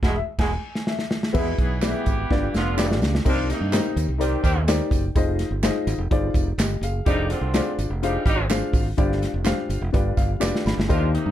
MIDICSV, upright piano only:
0, 0, Header, 1, 2, 480
1, 0, Start_track
1, 0, Tempo, 477327
1, 1351, Time_signature, 4, 2, 24, 8
1, 11375, End_track
2, 0, Start_track
2, 0, Title_t, "Upright piano"
2, 0, Program_c, 0, 0
2, 164, Note_on_c, 0, 76, 89
2, 216, Note_off_c, 0, 76, 0
2, 395, Note_on_c, 0, 80, 96
2, 887, Note_off_c, 0, 80, 0
2, 890, Note_on_c, 0, 76, 77
2, 1327, Note_off_c, 0, 76, 0
2, 1334, Note_on_c, 0, 59, 97
2, 1338, Note_on_c, 0, 64, 90
2, 1340, Note_on_c, 0, 68, 87
2, 1345, Note_on_c, 0, 52, 67
2, 1345, Note_on_c, 0, 71, 89
2, 1350, Note_on_c, 0, 76, 111
2, 1687, Note_off_c, 0, 59, 0
2, 1689, Note_off_c, 0, 64, 0
2, 1690, Note_off_c, 0, 68, 0
2, 1692, Note_off_c, 0, 71, 0
2, 1695, Note_off_c, 0, 76, 0
2, 1823, Note_on_c, 0, 59, 89
2, 1823, Note_on_c, 0, 64, 86
2, 1832, Note_on_c, 0, 56, 84
2, 1832, Note_on_c, 0, 71, 81
2, 1835, Note_on_c, 0, 74, 74
2, 1890, Note_off_c, 0, 74, 0
2, 1897, Note_on_c, 0, 76, 97
2, 2027, Note_off_c, 0, 52, 0
2, 2171, Note_off_c, 0, 59, 0
2, 2171, Note_off_c, 0, 64, 0
2, 2175, Note_off_c, 0, 56, 0
2, 2176, Note_off_c, 0, 71, 0
2, 2208, Note_off_c, 0, 76, 0
2, 2314, Note_on_c, 0, 62, 87
2, 2316, Note_on_c, 0, 65, 78
2, 2316, Note_on_c, 0, 67, 72
2, 2318, Note_on_c, 0, 43, 76
2, 2325, Note_on_c, 0, 71, 80
2, 2331, Note_on_c, 0, 74, 94
2, 2656, Note_off_c, 0, 62, 0
2, 2657, Note_off_c, 0, 65, 0
2, 2657, Note_off_c, 0, 67, 0
2, 2662, Note_off_c, 0, 71, 0
2, 2665, Note_off_c, 0, 74, 0
2, 2788, Note_on_c, 0, 62, 95
2, 2794, Note_on_c, 0, 65, 88
2, 2799, Note_on_c, 0, 67, 86
2, 2799, Note_on_c, 0, 71, 86
2, 2805, Note_on_c, 0, 74, 100
2, 2993, Note_off_c, 0, 43, 0
2, 3133, Note_off_c, 0, 62, 0
2, 3136, Note_off_c, 0, 65, 0
2, 3138, Note_off_c, 0, 71, 0
2, 3139, Note_off_c, 0, 67, 0
2, 3142, Note_off_c, 0, 74, 0
2, 3264, Note_on_c, 0, 63, 87
2, 3266, Note_on_c, 0, 70, 80
2, 3267, Note_on_c, 0, 67, 77
2, 3269, Note_on_c, 0, 48, 75
2, 3273, Note_on_c, 0, 72, 78
2, 3279, Note_on_c, 0, 75, 96
2, 3611, Note_off_c, 0, 63, 0
2, 3612, Note_off_c, 0, 70, 0
2, 3613, Note_off_c, 0, 67, 0
2, 3615, Note_off_c, 0, 72, 0
2, 3619, Note_off_c, 0, 75, 0
2, 3739, Note_on_c, 0, 63, 86
2, 3743, Note_on_c, 0, 67, 81
2, 3749, Note_on_c, 0, 70, 78
2, 3754, Note_on_c, 0, 72, 79
2, 3756, Note_on_c, 0, 75, 92
2, 3949, Note_off_c, 0, 48, 0
2, 4089, Note_off_c, 0, 63, 0
2, 4090, Note_off_c, 0, 67, 0
2, 4093, Note_off_c, 0, 70, 0
2, 4096, Note_off_c, 0, 72, 0
2, 4097, Note_off_c, 0, 75, 0
2, 4207, Note_on_c, 0, 63, 83
2, 4213, Note_on_c, 0, 67, 73
2, 4218, Note_on_c, 0, 70, 78
2, 4220, Note_on_c, 0, 72, 72
2, 4227, Note_on_c, 0, 74, 92
2, 4562, Note_off_c, 0, 63, 0
2, 4565, Note_off_c, 0, 67, 0
2, 4568, Note_off_c, 0, 70, 0
2, 4569, Note_off_c, 0, 72, 0
2, 4573, Note_off_c, 0, 74, 0
2, 4699, Note_on_c, 0, 63, 90
2, 4702, Note_on_c, 0, 67, 86
2, 4708, Note_on_c, 0, 72, 87
2, 4710, Note_on_c, 0, 70, 83
2, 4712, Note_on_c, 0, 74, 104
2, 5048, Note_off_c, 0, 63, 0
2, 5050, Note_off_c, 0, 67, 0
2, 5053, Note_off_c, 0, 72, 0
2, 5054, Note_off_c, 0, 70, 0
2, 5055, Note_off_c, 0, 74, 0
2, 5181, Note_on_c, 0, 63, 84
2, 5189, Note_on_c, 0, 65, 82
2, 5190, Note_on_c, 0, 68, 81
2, 5195, Note_on_c, 0, 72, 84
2, 5198, Note_on_c, 0, 75, 101
2, 5529, Note_off_c, 0, 63, 0
2, 5533, Note_off_c, 0, 65, 0
2, 5534, Note_off_c, 0, 68, 0
2, 5537, Note_off_c, 0, 72, 0
2, 5538, Note_off_c, 0, 75, 0
2, 5663, Note_on_c, 0, 63, 88
2, 5665, Note_on_c, 0, 65, 78
2, 5667, Note_on_c, 0, 68, 83
2, 5669, Note_on_c, 0, 72, 81
2, 5680, Note_on_c, 0, 75, 102
2, 6011, Note_off_c, 0, 63, 0
2, 6012, Note_off_c, 0, 65, 0
2, 6013, Note_off_c, 0, 68, 0
2, 6014, Note_off_c, 0, 72, 0
2, 6019, Note_off_c, 0, 75, 0
2, 6141, Note_on_c, 0, 63, 85
2, 6142, Note_on_c, 0, 65, 78
2, 6149, Note_on_c, 0, 68, 75
2, 6150, Note_on_c, 0, 72, 73
2, 6156, Note_on_c, 0, 74, 98
2, 6490, Note_off_c, 0, 63, 0
2, 6490, Note_off_c, 0, 65, 0
2, 6494, Note_off_c, 0, 68, 0
2, 6494, Note_off_c, 0, 72, 0
2, 6497, Note_off_c, 0, 74, 0
2, 6635, Note_on_c, 0, 67, 64
2, 6635, Note_on_c, 0, 75, 74
2, 6860, Note_off_c, 0, 75, 0
2, 6861, Note_off_c, 0, 67, 0
2, 6874, Note_on_c, 0, 77, 74
2, 6879, Note_on_c, 0, 68, 62
2, 7094, Note_off_c, 0, 68, 0
2, 7101, Note_on_c, 0, 62, 90
2, 7107, Note_on_c, 0, 65, 79
2, 7109, Note_on_c, 0, 68, 82
2, 7111, Note_on_c, 0, 72, 80
2, 7117, Note_on_c, 0, 74, 100
2, 7328, Note_off_c, 0, 77, 0
2, 7450, Note_off_c, 0, 62, 0
2, 7453, Note_off_c, 0, 65, 0
2, 7454, Note_off_c, 0, 68, 0
2, 7455, Note_off_c, 0, 72, 0
2, 7458, Note_off_c, 0, 74, 0
2, 7591, Note_on_c, 0, 62, 90
2, 7592, Note_on_c, 0, 65, 83
2, 7596, Note_on_c, 0, 72, 78
2, 7599, Note_on_c, 0, 68, 81
2, 7599, Note_on_c, 0, 74, 96
2, 7936, Note_off_c, 0, 62, 0
2, 7936, Note_off_c, 0, 65, 0
2, 7938, Note_off_c, 0, 72, 0
2, 7940, Note_off_c, 0, 68, 0
2, 7940, Note_off_c, 0, 74, 0
2, 8068, Note_on_c, 0, 62, 81
2, 8071, Note_on_c, 0, 65, 77
2, 8077, Note_on_c, 0, 72, 75
2, 8079, Note_on_c, 0, 68, 80
2, 8086, Note_on_c, 0, 77, 89
2, 8414, Note_off_c, 0, 62, 0
2, 8416, Note_off_c, 0, 65, 0
2, 8419, Note_off_c, 0, 72, 0
2, 8420, Note_off_c, 0, 68, 0
2, 8423, Note_off_c, 0, 77, 0
2, 8545, Note_on_c, 0, 62, 93
2, 8551, Note_on_c, 0, 65, 84
2, 8554, Note_on_c, 0, 68, 83
2, 8554, Note_on_c, 0, 72, 90
2, 8556, Note_on_c, 0, 77, 96
2, 8893, Note_off_c, 0, 62, 0
2, 8896, Note_off_c, 0, 65, 0
2, 8897, Note_off_c, 0, 72, 0
2, 8898, Note_off_c, 0, 68, 0
2, 8899, Note_off_c, 0, 77, 0
2, 9023, Note_on_c, 0, 62, 94
2, 9028, Note_on_c, 0, 67, 81
2, 9029, Note_on_c, 0, 43, 75
2, 9029, Note_on_c, 0, 65, 78
2, 9031, Note_on_c, 0, 72, 77
2, 9032, Note_on_c, 0, 74, 99
2, 9372, Note_off_c, 0, 62, 0
2, 9375, Note_off_c, 0, 65, 0
2, 9375, Note_off_c, 0, 67, 0
2, 9377, Note_off_c, 0, 72, 0
2, 9377, Note_off_c, 0, 74, 0
2, 9493, Note_on_c, 0, 62, 82
2, 9498, Note_on_c, 0, 65, 75
2, 9504, Note_on_c, 0, 67, 78
2, 9507, Note_on_c, 0, 72, 83
2, 9513, Note_on_c, 0, 77, 94
2, 9711, Note_off_c, 0, 43, 0
2, 9848, Note_off_c, 0, 62, 0
2, 9850, Note_off_c, 0, 65, 0
2, 9853, Note_off_c, 0, 67, 0
2, 9855, Note_off_c, 0, 72, 0
2, 9858, Note_off_c, 0, 77, 0
2, 9979, Note_on_c, 0, 62, 77
2, 9987, Note_on_c, 0, 43, 68
2, 9987, Note_on_c, 0, 65, 79
2, 9990, Note_on_c, 0, 71, 76
2, 9991, Note_on_c, 0, 67, 73
2, 9994, Note_on_c, 0, 74, 84
2, 10228, Note_on_c, 0, 77, 73
2, 10331, Note_off_c, 0, 62, 0
2, 10335, Note_off_c, 0, 65, 0
2, 10336, Note_off_c, 0, 71, 0
2, 10337, Note_off_c, 0, 67, 0
2, 10339, Note_off_c, 0, 74, 0
2, 10454, Note_off_c, 0, 77, 0
2, 10458, Note_on_c, 0, 62, 89
2, 10461, Note_on_c, 0, 65, 84
2, 10462, Note_on_c, 0, 67, 83
2, 10465, Note_on_c, 0, 79, 77
2, 10467, Note_on_c, 0, 74, 99
2, 10470, Note_on_c, 0, 71, 83
2, 10671, Note_off_c, 0, 43, 0
2, 10692, Note_off_c, 0, 79, 0
2, 10719, Note_on_c, 0, 83, 72
2, 10811, Note_off_c, 0, 62, 0
2, 10812, Note_off_c, 0, 65, 0
2, 10812, Note_off_c, 0, 67, 0
2, 10815, Note_off_c, 0, 74, 0
2, 10817, Note_off_c, 0, 71, 0
2, 10940, Note_off_c, 0, 83, 0
2, 10944, Note_on_c, 0, 63, 92
2, 10948, Note_on_c, 0, 70, 77
2, 10949, Note_on_c, 0, 67, 83
2, 10952, Note_on_c, 0, 51, 74
2, 10952, Note_on_c, 0, 72, 78
2, 10955, Note_on_c, 0, 75, 95
2, 11293, Note_off_c, 0, 63, 0
2, 11296, Note_off_c, 0, 67, 0
2, 11296, Note_off_c, 0, 70, 0
2, 11298, Note_off_c, 0, 72, 0
2, 11299, Note_off_c, 0, 75, 0
2, 11375, Note_off_c, 0, 51, 0
2, 11375, End_track
0, 0, End_of_file